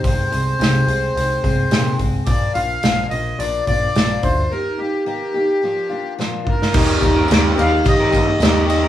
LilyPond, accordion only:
\new Staff \with { instrumentName = "Accordion" } { \time 4/4 \key ees \major \tempo 4 = 108 c''2.~ c''8 r8 | d''8 f''4 ees''8 d''8 d''4 c''8 | bes'8 g'8 g'2 r8 bes'8~ | bes'4. f''8 ees''4. ees''8 | }